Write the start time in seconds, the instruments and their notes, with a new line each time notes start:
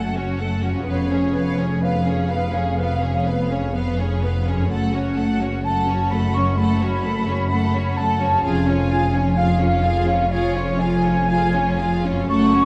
Already playing: double bass section F#1, harp F#2 C#4 F#4 A4 C#5, cello section F#2, viola section A3, violin section A4 F#5, flute section F#5
0.16 viola section C#4, violin section F#4 C#5
0.39 viola section A3, violin section A4 F#5
0.62 viola section C#4, violin section F#4 C#5
0.70 harp F2
0.74 harp C#4
0.79 harp G#4
0.83 double bass section F1, harp B4, violin section B4
0.87 cello section F2, viola section B3, flute section C#5, violin section F5
1.10 viola section C#4, violin section G#4 C#5
1.34 viola section B3, violin section B4 F5
1.57 viola section C#4, violin section G#4 C#5
1.82 viola section B3, violin section B4 F5, flute section F5
2.05 viola section C#4, violin section G#4 C#5
2.29 viola section B3, violin section B4 F5
2.53 viola section C#4, violin section G#4 C#5
2.77 viola section B3, violin section B4 F5
3.00 viola section C#4, violin section G#4
3.04 violin section C#5
3.26 viola section B3, violin section B4 F5
3.49 viola section C#4, violin section G#4 C#5
3.74 viola section B3, violin section B4 F5
3.98 viola section C#4, violin section G#4 C#5
4.22 viola section B3, violin section B4 F5
4.46 viola section C#4, violin section G#4 C#5
4.52 harp F#2
4.57 harp C#4
4.61 harp A4
4.66 double bass section F#1, cello section F#2, viola section A3, harp C#5, flute section F#5
4.70 violin section A4 F#5
4.93 viola section C#4, violin section F#4 C#5
5.16 viola section A3, violin section A4 F#5
5.39 viola section C#4, violin section F#4 C#5
5.63 viola section A3, violin section A4 F#5, flute section A5
5.87 viola section C#4, violin section F#4 C#5
6.11 viola section A3, violin section A4 F#5, flute section B5
6.35 viola section C#4, violin section F#4 C#5, flute section C#6
6.58 viola section A3, violin section A4 F#5, flute section B5
6.81 viola section C#4, violin section F#4 C#5
7.03 viola section A3, violin section A4 F#5
7.25 viola section C#4, violin section F#4 C#5
7.49 viola section A3, violin section A4 F#5
7.72 viola section C#4, violin section F#4 C#5
7.97 viola section A3, violin section A4 F#5, flute section A5
8.20 viola section C#4, violin section F#4 C#5
8.26 harp F2
8.30 harp C#4
8.35 harp G#4
8.39 double bass section F1, viola section F4, harp C#5
8.43 cello section F2, violin section G#4 F5, flute section G#5
8.66 viola section C#4, violin section F4 C#5
8.89 viola section F4, violin section G#4 F5
9.12 viola section C#4, violin section F4 C#5
9.36 viola section F4, violin section G#4 F5, flute section F5
9.58 viola section C#4, violin section F4 C#5
9.81 viola section F4, violin section G#4 F5
10.06 viola section C#4, violin section F4 C#5
10.31 viola section F4, violin section G#4 F5, flute section C#5
10.54 viola section C#4, violin section F4 C#5
10.79 viola section F4, violin section G#4 F5, flute section G#5
11.04 viola section C#4, violin section F4 C#5
11.27 viola section F4, violin section G#4 F5
11.52 viola section C#4, violin section F4 C#5
11.77 viola section F4, violin section G#4 F5
12.03 viola section C#4, violin section F4 C#5
12.11 harp F#2
12.15 harp C#4
12.19 harp A4
12.24 violin section A4, harp C#5
12.28 double bass section F#1, cello section F#2, viola section A3, violin section F#5, flute section C#6
12.52 viola section C#4, violin section F#4 C#5